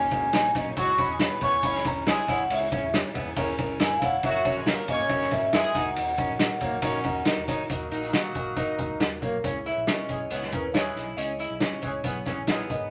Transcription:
Already playing: C#4 G#5
0.11 C#2 A#3 D#4 F#4 G#4, kick, ride
0.33 A#1 A#3 D#4 F#4 C#5 G#5, snare, ride
0.55 B1 A#3 C#4 D#4 F#4 C#5 D#5, kick, snare, ride
0.77 C#2 F#3 C#4 E4 F#4 G#4 C#5 C#6, kick, ride
0.98 C#4 E4 G#4 D#5 B5, kick, ride
1.09 E2 G#3 G#4
1.20 B3 C#4 E4 G#4 B4 C#5, snare, ride
1.41 C#2 B3 C#4 E4 G#4 C#5 E5 C#6, kick, ride
1.52 D#2
1.63 C#2 C#4 E4 G#4 C#5 B5, kick, ride
1.75 snare
1.84 D#2 C#4 E4 G#4 C#5 A#5, kick, snare, ride
2.06 C#2 G#3 C#4 E4 G#4 C#5 G#5, snare, ride
2.28 A#1 C#4 E4 G#4 C#5 F#5, kick, snare, ride
2.39 B1
2.50 C#2 C#4 E4 G#4 C#5 E5, ride
2.72 C#4 E4 G#4 C#5, kick, ride
2.83 E2
2.94 C#4 E4 G#4 C#5, snare, ride
3.15 C#2 B3 C#4 E4 G#4 E5, kick, ride
3.27 E2
3.36 D#2 C#4 E4 G#4 A#4, kick, ride
3.58 C#2 C#4 E4 G#4 A#4, kick, ride
3.80 F#1 C#4 E4 A#4 G#5, snare, ride
3.98 E1 E4 F5, kick, snare, ride
4.03 C#4 E4 G#4 C#5 F#5
4.23 F#1 F#3 C#4 F#4 A#4 C#5 E5, kick, ride
4.45 C#4 F#4 A#4 C#5, kick, ride
4.56 A#1 G#3 G#4
4.66 A#3 C#4 F#4 A#4 C#5, snare, ride
4.88 F#1 A#3 C#4 F#4 A#4 C#5 D#5, kick, ride
4.99 G#1
5.09 F#1 C#4 F#4 A#4 E5, kick, ride
5.21 snare
5.31 G#1 C#4 F#4 A#4 C#5 E5, kick, snare, ride
5.53 F#1 G#3 C#4 E4 F#4 G#4 A#4, snare, ride
5.75 D#2 D#4 F#4 A#4 D#5 F#5, kick, snare, ride
5.86 C#2
5.96 D#2, ride
6.18 C#4 D#4 F#4 A#4 D#5, kick, ride
6.29 A#1
6.39 D#4 F#4 A#4 D#5, snare, ride
6.61 C#2 A#3 D#4 F#4 A#4 C#5, kick, ride
6.72 B1
6.82 A#1 C#4 D#4 F#4 A#4 C#5, kick, ride
7.04 D#2 D#4 F#4 A#4 D#5 A#5, kick, ride
7.25 D#4 F#4 A#4 D#5 F#5, snare, ride
7.37 D#2
7.48 D#3 D#4 F#4 A#4 C#5, kick, snare, ride
7.70 D#2 F#3 A#3 D#4 F#4 A#4 D#5, kick, closed hi-hat
7.91 A#1 D#4 F#4 A#4 D#5, closed hi-hat
8.03 closed hi-hat
8.12 D#3 F#4 A#4 D#5, snare, closed hi-hat
8.34 A#1 F#4 A#4 D#5, kick, closed hi-hat
8.56 D#4 F#4 A#4 D#5, kick, closed hi-hat
8.78 D#2 F#4 A#4 D#5, kick, closed hi-hat
8.89 C#2
9.00 D#2 F#4 A#4 D#5, snare, closed hi-hat
9.22 B1 A#3 F#4 A#4 C#5, kick, closed hi-hat
9.44 C#2 C#4 E4 G#4 C#5, kick, closed hi-hat
9.65 E4 G#4 B4 E5, closed hi-hat
9.77 A#1
9.87 C#4 E4 G#4 A#4 D#5, snare, closed hi-hat
9.98 muted fingered electric bass stroke
10.09 B1 E3 G#3 C#4 E4 G#4 C#5, kick, closed hi-hat
10.30 C#2 E3 G#3 B3 C#4 E4 G#4 C#5 E5, closed hi-hat
10.42 snare
10.52 D#2 E3 G#3 C#4 E4 G#4 A#4 B4, kick, closed hi-hat
10.73 E3 G#3 C#4 E4 G#4 C#5, snare, closed hi-hat
10.96 B1 E4 G#4 D#5, snare, closed hi-hat
11.17 C#2 C#4 E4 G#4 C#5 D#5, closed hi-hat
11.39 E4 G#4 D#5, closed hi-hat
11.50 B1
11.60 C#4 E4 G#4 C#5, snare, closed hi-hat
11.71 muted fingered electric bass stroke
11.82 C#2 E3 G#3 C#4 E4 G#4 C#5, kick, closed hi-hat
12.04 B1 E3 G#3 B3 C#4 E4 G#4 B4, kick, closed hi-hat
12.25 E3 G#3 C#4 E4 G#4 C#5, kick, snare, closed hi-hat
12.37 A#1
12.47 D#3 G#3 B3 E4 G#4 E5, snare, closed hi-hat
12.69 G#1 D#4 G#4 A#4 D#5, kick, closed hi-hat
12.74 B4

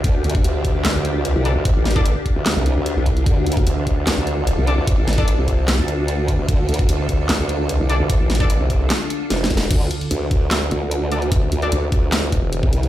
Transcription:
Already playing: D3 D4 F4 G4
0.04 D2, kick, closed hi-hat
0.24 D2, closed hi-hat
0.30 closed hi-hat
0.35 kick, closed hi-hat
0.44 D2, closed hi-hat
0.65 kick, closed hi-hat
0.85 D2, snare, clap, closed hi-hat
0.95 D2
1.05 closed hi-hat
1.25 closed hi-hat
1.36 C2
1.45 D4 A4 D5, closed hi-hat
1.56 D2
1.65 kick, closed hi-hat
1.76 A1
1.85 snare, closed hi-hat
1.91 closed hi-hat
1.96 D4 A4 D5, kick, closed hi-hat
2.06 closed hi-hat
2.26 kick, closed hi-hat
2.36 D2
2.46 snare, clap, closed hi-hat
2.56 C2
2.66 closed hi-hat
2.76 D2
2.86 closed hi-hat
2.97 C2
3.06 kick, closed hi-hat
3.17 closed hi-hat
3.26 D2 A4, kick, closed hi-hat
3.46 D2, closed hi-hat
3.52 closed hi-hat
3.57 kick, closed hi-hat
3.67 D2, closed hi-hat
3.87 kick, closed hi-hat
4.07 D2, snare, clap, closed hi-hat
4.17 D2
4.27 closed hi-hat
4.47 closed hi-hat
4.58 C2
4.67 D4 A4 D5, closed hi-hat
4.78 D2
4.87 kick, closed hi-hat
4.98 A1
5.08 snare, closed hi-hat
5.13 closed hi-hat
5.18 D4 A4 D5, kick, closed hi-hat
5.28 closed hi-hat
5.38 C2
5.48 kick, closed hi-hat
5.68 snare, clap, closed hi-hat
5.79 D2
5.88 closed hi-hat
6.08 closed hi-hat
6.28 kick, closed hi-hat
6.39 D2
6.49 D2, kick, closed hi-hat
6.69 D2, closed hi-hat
6.74 closed hi-hat
6.79 kick, closed hi-hat
6.89 D2, closed hi-hat
7.09 kick, closed hi-hat
7.29 D2, snare, clap, closed hi-hat
7.40 D2
7.49 closed hi-hat
7.69 closed hi-hat
7.80 C2
7.89 D4 A4 D5, closed hi-hat
8.00 D2
8.10 kick, closed hi-hat
8.20 A1
8.30 snare, closed hi-hat
8.35 closed hi-hat
8.40 D4 A4 D5, kick, closed hi-hat
8.50 closed hi-hat
8.60 C2
8.70 kick, closed hi-hat
8.90 snare, clap, closed hi-hat
9.10 closed hi-hat
9.30 F1, snare, closed hi-hat
9.44 snare
9.51 E1, kick, closed hi-hat
9.57 snare, closed hi-hat
9.71 D2 D3 D4 F4 A4, kick, closed hi-hat, crash
9.91 closed hi-hat
10.01 closed hi-hat
10.11 D2, closed hi-hat
10.31 kick, closed hi-hat
10.51 snare, clap, closed hi-hat
10.71 D2, closed hi-hat
10.91 closed hi-hat
11.12 D4 A4 D5, closed hi-hat
11.22 closed hi-hat
11.32 D2, kick, closed hi-hat
11.52 D2, closed hi-hat
11.62 D4 A4 D5, closed hi-hat
11.72 D2, closed hi-hat
11.92 kick, closed hi-hat
12.12 snare, clap, closed hi-hat
12.32 E1, kick, closed hi-hat
12.53 closed hi-hat
12.63 C2, kick
12.73 closed hi-hat
12.83 closed hi-hat

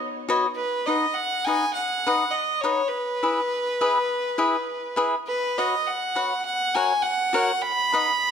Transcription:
Already playing: B3 D#4 C#5
0.28 F#4 B4 C#5 D#5
0.56 B4
0.86 D#4 B4 D#5 F#5
1.14 F#5
1.45 D#4 B4 D#5 F#5 G#5
1.74 F#5
2.06 D#4 B4 D#5 F#5
2.31 D#5
2.61 D#4 B4 C#5 D#5 F#5
2.88 B4
3.23 E4 G#4 B4 E5
3.81 E4 G#4 B4 E5
4.38 E4 G#4 B4 E5
4.96 E4 G#4 B4 E5
5.27 B4
5.58 F#4 B4 C#5 D#5 F#5
5.86 F#5
6.15 F#4 B4 C#5 F#5
6.45 F#5
6.74 F#4 A#4 C#5 F#5 G#5
7.02 F#5
7.33 F#4 A#4 C#5 F#5
7.61 B5
7.92 D#4 B4 D#5 F#5

